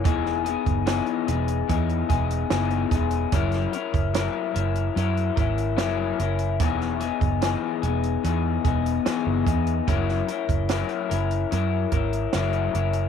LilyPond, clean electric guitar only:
\new Staff \with { instrumentName = "Clean electric guitar" } { \time 4/4 \key e \lydian \tempo 4 = 73 <e b dis' gis'>8 <b dis' gis'>8 <e b dis' gis'>8 <b dis' gis'>8 <e b dis' gis'>8 <b dis' gis'>8 <e b dis' gis'>8 <b dis' gis'>8 | <fis cis' e' ais'>8 <cis' e' ais'>8 <fis cis' e' ais'>8 <cis' e' ais'>8 <fis cis' e' ais'>8 <cis' e' ais'>8 <fis cis' e' ais'>8 <cis' e' ais'>8 | <e b dis' gis'>8 <b dis' gis'>8 <e b dis' gis'>8 <b dis' gis'>8 <e b dis' gis'>8 <b dis' gis'>8 <e b dis' gis'>8 <b dis' gis'>8 | <fis cis' e' ais'>8 <cis' e' ais'>8 <fis cis' e' ais'>8 <cis' e' ais'>8 <fis cis' e' ais'>8 <cis' e' ais'>8 <fis cis' e' ais'>8 <cis' e' ais'>8 | }